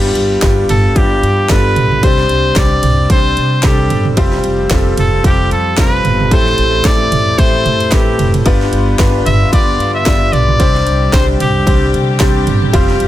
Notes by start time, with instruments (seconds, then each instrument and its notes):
Already playing: upright bass G1, upright piano G2 G3 B3 D4 F4 G4
0.04 snare
0.15 upright bass G1, ride
0.42 upright bass G1, upright piano G3 B3 D4 F4 G4, kick, snare, clap, ride
0.69 upright bass G1, trumpet A4, floor tom, ride
0.96 upright bass G1, upright piano G3 B3 D4 F4 G4, trumpet G4, kick, ride
1.23 upright bass G2, ride
1.49 upright bass G1, upright piano G3 B3 D4 F4 A4, trumpet B4, kick, snare, clap, ride
1.76 upright bass B1, floor tom, ride
1.91 floor tom
2.03 upright bass C2, upright piano C3 G3 C4 D4 G4 C5, trumpet C5, kick, ride
2.18 snare
2.29 upright bass C2, ride
2.56 upright bass C2, upright piano G3 C4 D4 G4 C5, trumpet D5, kick, snare, clap, ride
2.83 upright bass C2, floor tom, ride
3.10 upright piano G3 C4 D4 G4 C5, trumpet C5, kick, ride
3.37 upright bass C3, ride
3.63 upright bass C2, upright piano G3 C4 D4 G4 A4, trumpet G4, kick, snare, clap, ride
3.90 upright bass G1, floor tom, ride
4.05 floor tom
4.17 upright bass F1, upright piano G3 C4 F4 G4 C5, kick, ride
4.32 snare
4.44 upright bass F1, ride
4.70 upright bass F1, upright piano G3 C4 F4 G4 A4, kick, snare, clap, ride
4.97 upright bass F1, trumpet A4, floor tom, ride
5.24 upright bass F1, upright piano G3 C4 F4 G4 A4, trumpet G4, kick, ride
5.51 upright bass F2, trumpet A4, ride
5.77 upright bass F1, upright piano G3 C4 F4 G4, trumpet B4, kick, snare, clap, ride
6.04 upright bass G1, floor tom, ride
6.20 floor tom
6.31 upright bass A1, upright piano A2 A3 C4 E4 G4 A4, trumpet C5, kick, ride
6.46 snare
6.58 upright bass A1, ride
6.84 upright bass A1, upright piano A3 C4 E4 G4 A4, trumpet D5, kick, snare, clap, ride
7.12 upright bass A1, floor tom, ride
7.38 upright bass A1, upright piano A3 C4 E4 G4 A4, trumpet C5, kick, ride
7.65 upright bass A2, floor tom, ride
7.80 ride
7.91 upright bass A1, upright piano A3 C4 E4 G4 B4, trumpet G4, kick, snare, clap, ride
8.19 upright bass F1, floor tom, ride
8.34 floor tom, ride
8.46 upright bass G1, upright piano G2 B3 D4 F4 G4 B4, string section D3 G3 B3 F4, kick, ride
8.61 snare
8.72 upright bass G1, ride
8.99 upright bass G1, upright piano B3 D4 F4 G4 B4, kick, snare, clap, ride
9.25 upright bass G1, trumpet E5, floor tom, ride
9.53 upright bass G1, upright piano B3 D4 F4 G4 B4, trumpet D5, kick, ride
9.79 upright bass G2, ride
9.94 trumpet E5
10.06 upright bass G1, upright piano B3 D4 F4 G4 D5, kick, snare, clap, ride
10.33 upright bass B1, trumpet D5, floor tom, ride
10.48 floor tom
10.59 upright bass C2, upright piano C3 G3 C4 D4 G4 C5, string section D3 C4 G4, kick, ride
10.75 snare
10.86 upright bass C2, ride
11.13 upright bass C2, upright piano G3 C4 D4 G4 C5, trumpet C5, kick, snare, clap, ride
11.40 upright bass C2, trumpet G4, floor tom, ride
11.66 upright bass C2, upright piano G3 C4 D4 G4 C5, kick, ride
11.93 upright bass C3, ride
12.20 upright bass C2, upright piano G3 C4 D4 G4 C5, kick, snare, clap, ride
12.47 upright bass G1, floor tom, ride
12.62 floor tom
12.73 upright bass F1, string section F3, upright piano G3 C4 F4 G4 C5, kick, ride
12.88 snare
13.00 upright bass F1, ride